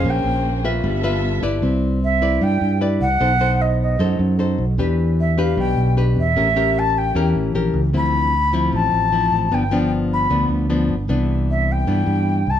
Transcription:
0.00 0.61 C#4 medium
0.00 0.61 G#4 medium
0.00 0.61 C5 medium
0.00 0.12 F5 medium
0.04 0.23 A#1 loud
0.04 0.83 A#3 medium
0.04 0.82 A#3 medium
0.04 0.83 C#4 medium
0.04 0.83 G#4 medium
0.04 0.82 C5 medium
0.10 0.67 G5 medium
0.24 0.79 A#1 medium
0.64 1.00 F4 medium
0.64 1.00 B4 medium
0.64 1.01 E5 medium
0.83 1.39 G1 loud
0.83 1.61 G3 medium
0.83 1.61 B3 medium
0.83 1.61 F4 medium
0.83 1.61 A4 medium
0.83 1.62 E5 medium
1.03 1.40 F4 medium
1.03 1.40 B4 medium
1.03 1.40 E5 medium
1.42 1.61 G1 medium
1.42 1.99 E4 medium
1.42 1.99 B4 medium
1.42 1.99 D5 medium
1.62 2.37 C2 medium
1.62 2.40 C4 soft
2.04 2.45 E5 medium
2.22 2.78 E4 medium
2.22 2.78 B4 medium
2.22 2.78 D5 medium
2.41 2.59 G2 medium
2.41 3.18 G3 medium
2.41 2.82 G5 medium
2.61 2.98 G2 medium
2.81 3.07 E4 medium
2.81 3.08 B4 medium
2.81 3.08 D5 medium
3.00 3.19 C2 medium
3.00 3.63 F#5 loud
3.20 3.95 B1 medium
3.20 3.97 B3 medium
3.20 3.32 D#4 soft
3.20 3.32 A4 soft
3.20 3.32 C5 medium
3.40 3.96 D#4 medium
3.40 3.96 A4 medium
3.40 3.96 C5 medium
3.62 3.80 D#5 medium
3.82 4.17 D#5 medium
3.99 4.17 F#2 medium
3.99 4.76 F#3 medium
3.99 4.35 D#4 medium
3.99 4.36 A4 medium
3.99 4.36 C5 medium
4.19 4.56 F#2 medium
4.39 4.64 D#4 soft
4.39 4.64 A4 medium
4.39 4.64 C5 medium
4.58 4.77 B1 medium
4.78 5.53 E2 medium
4.78 5.55 E3 medium
4.78 5.34 D4 medium
4.78 5.35 G4 medium
4.78 5.35 B4 medium
5.20 5.42 E5 medium
5.38 5.93 D4 medium
5.38 5.94 G4 medium
5.38 5.94 B4 medium
5.38 5.58 F5 medium
5.57 5.75 B1 medium
5.57 6.34 B2 medium
5.57 5.95 G5 medium
5.77 6.13 B1 medium
5.97 6.23 D4 medium
5.97 6.23 G4 medium
5.97 6.23 B4 medium
6.16 6.35 E2 medium
6.16 6.80 E5 medium
6.36 7.11 A1 medium
6.36 7.13 A3 medium
6.36 6.48 C#4 soft
6.36 6.48 G4 medium
6.36 6.48 A#4 medium
6.56 7.12 C#4 medium
6.56 7.12 G4 medium
6.56 7.12 A#4 medium
6.79 7.00 A5 loud
6.98 7.36 G5 medium
7.14 7.33 E2 medium
7.14 7.92 E3 medium
7.14 7.51 C#4 medium
7.14 7.52 G4 medium
7.14 7.52 A#4 medium
7.35 7.52 A1 medium
7.54 7.72 A#1 medium
7.54 7.80 C#4 medium
7.54 7.80 G4 medium
7.54 7.80 A#4 medium
7.74 7.91 C#2 medium
7.93 8.68 D2 medium
7.93 8.70 D3 medium
7.93 8.33 F3 soft
7.93 8.33 C4 medium
7.93 8.33 E4 medium
7.93 8.77 B5 loud
8.53 9.09 F3 medium
8.53 9.09 C4 medium
8.53 9.09 E4 medium
8.73 8.91 A1 medium
8.73 9.49 A2 medium
8.73 9.56 A5 medium
8.92 9.29 A1 medium
9.12 9.50 F3 medium
9.12 9.50 C4 soft
9.12 9.50 E4 medium
9.32 9.50 A1 medium
9.51 10.26 G1 medium
9.51 10.28 G2 medium
9.51 9.63 F3 medium
9.51 9.63 B3 medium
9.51 9.63 D4 medium
9.51 9.92 G5 medium
9.71 10.27 F3 medium
9.71 10.27 B3 medium
9.71 10.27 D4 medium
10.13 10.48 B5 medium
10.30 10.48 D2 medium
10.30 11.07 D3 medium
10.30 10.66 F3 soft
10.30 10.66 B3 medium
10.30 10.66 D4 medium
10.49 10.86 D2 medium
10.70 10.95 F3 medium
10.70 10.95 B3 medium
10.70 10.95 D4 medium
10.89 11.07 G1 medium
11.08 11.83 C2 medium
11.08 11.85 C3 medium
11.08 11.84 E3 medium
11.08 11.84 B3 medium
11.08 11.85 D4 medium
11.51 11.73 E5 medium
11.72 12.52 G5 medium
11.87 12.05 G2 medium
11.87 12.60 G2 medium
11.87 12.40 E3 medium
11.87 12.40 B3 medium
11.87 12.40 D4 medium
12.06 12.43 G2 medium
12.47 12.60 C2 medium
12.47 12.60 A5 loud

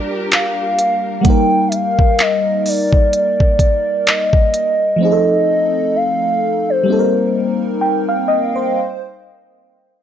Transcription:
0.00 1.19 G3 medium
0.00 1.21 G3 medium
0.00 1.20 A#3 medium
0.00 1.21 D4 medium
0.00 1.22 D4 medium
0.00 1.22 F4 medium
0.00 1.23 G4 medium
0.00 1.22 A#4 medium
0.00 1.27 A#4 medium
0.00 0.13 D5 loud
0.32 1.22 F5 loud
0.32 clap loud
0.32 closed hi-hat medium
0.79 closed hi-hat medium
1.21 4.94 G3 medium
1.21 4.95 A#3 medium
1.21 1.30 F#5 medium
1.21 closed hi-hat medium
1.25 4.97 D#4 medium
1.25 1.70 G5 loud
1.25 kick loud
1.30 4.98 A#4 medium
1.68 1.76 E5 medium
1.68 closed hi-hat medium
1.75 2.23 F5 loud
1.99 kick loud
2.19 2.70 D#5 loud
2.19 clap loud
2.19 closed hi-hat medium
2.66 3.14 D5 medium
2.66 open hi-hat medium
2.93 kick loud
3.13 4.10 D5 loud
3.13 closed hi-hat medium
3.40 kick medium
3.59 kick medium
3.59 closed hi-hat medium
4.07 5.01 D#5 loud
4.07 clap loud
4.07 closed hi-hat medium
4.33 kick loud
4.54 closed hi-hat medium
4.96 6.82 F3 medium
4.96 6.83 A3 medium
5.01 6.84 C4 medium
5.01 6.85 D#4 medium
5.01 5.98 D#5 loud
5.05 5.10 G#4 medium
5.12 6.90 A4 medium
5.96 6.71 F5 loud
6.70 7.62 C5 medium
6.84 8.69 G3 medium
6.84 8.70 A#3 medium
6.88 8.72 C4 medium
6.88 8.73 D#4 medium
6.92 6.97 A4 medium
6.99 8.77 A#4 medium
7.81 8.07 G5 medium
8.09 8.27 F5 medium
8.28 8.54 D#5 medium
8.56 9.00 C5 medium

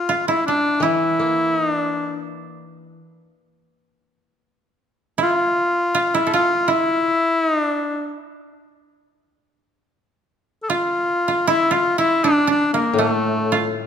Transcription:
0.00 0.24 F4 medium
0.09 0.34 F4 medium
0.28 0.44 E4 medium
0.28 0.82 E4 medium
0.47 0.84 D4 medium
0.47 2.91 D4 medium
0.80 2.96 E3 soft
0.80 3.09 E4 medium
0.80 1.57 E4 medium
1.19 2.62 A#3 soft
1.57 1.75 D#4 medium
1.75 2.26 D4 medium
5.18 5.35 E4 medium
5.22 6.15 F4 medium
5.35 5.94 F4 medium
5.95 6.20 F4 medium
6.14 6.32 E4 medium
6.14 6.40 E4 medium
6.27 8.17 A4 soft
6.34 6.74 F4 medium
6.34 6.71 F4 medium
6.68 8.94 E4 medium
6.68 7.44 E4 medium
7.44 7.62 D#4 medium
7.62 8.14 D4 medium
10.63 10.71 A4 medium
10.70 11.28 F4 medium
10.70 11.47 F4 medium
11.28 11.53 F4 medium
11.47 11.77 E4 medium
11.47 11.74 E4 medium
11.71 12.04 F4 medium
11.71 11.97 F4 medium
11.98 13.58 E4 medium
11.98 12.25 E4 medium
12.24 12.48 D4 medium
12.24 12.47 D4 medium
12.47 13.87 D4 medium
12.47 12.72 D4 medium
12.73 13.01 A#3 medium
12.73 13.05 A#3 medium
12.93 13.87 A2 soft
12.99 13.87 A3 medium
12.99 13.71 A3 medium
13.52 13.87 F4 medium

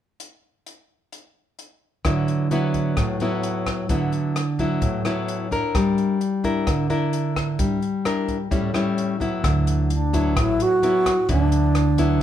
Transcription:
0.20 closed hi-hat soft
0.66 closed hi-hat soft
1.12 closed hi-hat soft
1.59 closed hi-hat soft
2.05 2.95 D3 medium
2.05 2.47 F#3 soft
2.05 2.48 B3 soft
2.05 2.48 E4 soft
2.05 kick medium
2.05 cross-stick medium
2.05 closed hi-hat soft
2.28 closed hi-hat soft
2.51 3.17 F#3 soft
2.51 3.17 B3 medium
2.51 3.17 E4 medium
2.51 closed hi-hat soft
2.74 kick soft
2.74 closed hi-hat soft
2.97 3.88 A2 medium
2.97 kick medium
2.97 cross-stick medium
2.97 closed hi-hat soft
3.20 3.87 F#3 medium
3.20 3.87 B3 medium
3.20 3.87 E4 medium
3.20 closed hi-hat soft
3.43 closed hi-hat soft
3.66 kick soft
3.66 cross-stick medium
3.66 closed hi-hat soft
3.89 4.80 D3 medium
3.89 4.36 F#3 soft
3.89 4.36 B3 soft
3.89 4.36 E4 soft
3.89 kick medium
3.89 closed hi-hat soft
4.12 closed hi-hat soft
4.36 cross-stick soft
4.36 closed hi-hat soft
4.59 5.02 F#3 medium
4.59 5.02 B3 medium
4.59 5.02 E4 medium
4.59 kick soft
4.59 closed hi-hat soft
4.82 5.72 A2 medium
4.82 kick soft
4.82 closed hi-hat soft
5.05 5.48 F#3 medium
5.05 5.48 B3 medium
5.05 5.48 E4 medium
5.05 cross-stick soft
5.05 closed hi-hat soft
5.28 closed hi-hat soft
5.51 6.17 D4 medium
5.51 6.17 E4 medium
5.51 6.18 A#4 medium
5.51 kick soft
5.51 closed hi-hat soft
5.75 6.65 G3 medium
5.75 kick medium
5.75 cross-stick medium
5.75 closed hi-hat soft
5.98 closed hi-hat soft
6.21 closed hi-hat soft
6.44 6.87 D4 medium
6.44 6.87 E4 medium
6.44 6.87 A#4 medium
6.44 kick soft
6.44 closed hi-hat soft
6.67 7.57 D3 medium
6.67 kick medium
6.67 cross-stick medium
6.67 closed hi-hat soft
6.90 7.79 D4 medium
6.90 7.79 E4 medium
6.90 7.79 A#4 medium
6.90 closed hi-hat soft
7.13 closed hi-hat soft
7.36 kick soft
7.36 cross-stick medium
7.36 closed hi-hat soft
7.59 8.49 G3 medium
7.59 kick medium
7.59 closed hi-hat soft
7.82 closed hi-hat soft
8.05 8.37 D4 medium
8.05 8.37 E4 medium
8.05 8.37 A#4 medium
8.05 cross-stick soft
8.05 closed hi-hat soft
8.28 kick soft
8.28 closed hi-hat soft
8.51 9.42 A2 medium
8.51 8.71 G3 soft
8.51 8.71 C#4 soft
8.51 8.71 E4 medium
8.51 kick medium
8.51 closed hi-hat soft
8.74 9.17 G3 medium
8.74 9.17 C#4 medium
8.74 9.18 E4 medium
8.74 cross-stick soft
8.74 closed hi-hat soft
8.98 closed hi-hat soft
9.20 9.88 F#3 medium
9.20 9.89 B3 medium
9.20 9.89 E4 medium
9.20 kick soft
9.20 closed hi-hat soft
9.43 10.37 D2 medium
9.43 10.34 D3 soft
9.43 kick medium
9.43 cross-stick medium
9.43 closed hi-hat medium
9.67 closed hi-hat soft
9.90 10.35 D4 medium
9.90 closed hi-hat soft
10.13 10.79 F#3 medium
10.13 10.79 B3 medium
10.13 10.80 E4 medium
10.13 kick soft
10.13 closed hi-hat soft
10.36 10.58 A1 medium
10.36 11.26 A2 soft
10.36 10.64 E4 medium
10.36 kick medium
10.36 cross-stick medium
10.36 closed hi-hat medium
10.60 11.30 F#4 medium
10.60 closed hi-hat soft
10.83 11.13 F#3 soft
10.83 11.13 B3 medium
10.83 11.13 E4 medium
10.83 closed hi-hat soft
11.06 kick soft
11.06 cross-stick medium
11.06 closed hi-hat soft
11.29 12.21 D2 medium
11.29 12.19 D3 medium
11.29 11.75 F#3 soft
11.29 11.75 B3 soft
11.29 12.23 D4 medium
11.29 11.75 E4 soft
11.29 kick medium
11.29 closed hi-hat medium
11.52 closed hi-hat soft
11.75 cross-stick soft
11.75 closed hi-hat soft
11.98 12.23 F#3 soft
11.98 12.23 B3 medium
11.98 12.23 E4 medium
11.98 kick soft
11.98 closed hi-hat soft

